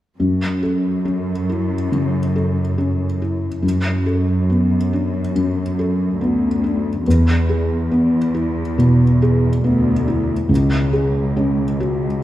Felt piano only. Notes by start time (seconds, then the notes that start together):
0.20 F#2
0.63 A4
1.05 C#4
1.49 E4
1.92 C#3
2.36 A4
2.78 C#4
3.22 E4
3.62 F#2
4.06 A4
4.50 B3
4.93 D4
5.35 F#2
5.79 A4
6.21 B3
6.64 D4
7.08 E2
7.49 G#4
7.91 B3
8.34 E4
8.78 B2
9.22 G#4
9.64 B3
10.08 E4
10.49 C#2
10.93 G#4
11.37 C#4
11.80 F#4